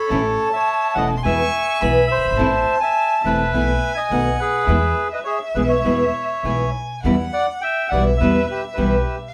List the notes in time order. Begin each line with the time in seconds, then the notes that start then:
Already playing: A4 C#5 B5
0.09 A1 E3 A3 C#4 E4 A5
0.53 C#5 E5
0.94 E1 E3 A3 C#4 E4 D#5 F#5
1.17 C6
1.23 E2 B2 E3 G#3 B3 E4 E5 G#5 C#6
1.81 B1 B2 E3 G#3 B3 E4 B5
2.07 E5
2.11 C5
2.17 F#1
2.25 G1
2.31 G#1
2.37 A1 E3 A3 C4 E4 A5
2.80 E5 G#5
3.23 E1 E3 A3 C4 E4 B4 E5
3.53 B1 B2 E3 A3 B3 E4 G#5
3.95 D#5 G#5
4.10 B1 B2 D#3 A3 B3 D#4 F#4 F#5
4.39 G#4 B4
4.67 E2 B2 E3 G#3 B3 E4 E5
5.13 B4 D#5
5.24 G#4 C#5
5.55 B1 B2 E3 G#3 B3 E4 G#4 B4
5.69 C#5 E5
5.84 E2 B2 E3 G#3 B3 E4
6.43 B1 B2 E3 G#3 B3 E4 G#5
7.04 E2 B2 E3 G3 B3 E4 F#5
7.33 D5 F#5
7.61 E5 G5
7.89 B1 B2 G3 B3 E4 D5 F#5
7.93 E3 G3 B3 E4
8.17 E2 B2 E3 G3 B3 E4 B4 E5
8.22 B3 E4
8.48 G4 B4
8.74 B1 E3 G3 B3 E4 G4 B4
8.78 B2 G3 B3 E4
9.29 F5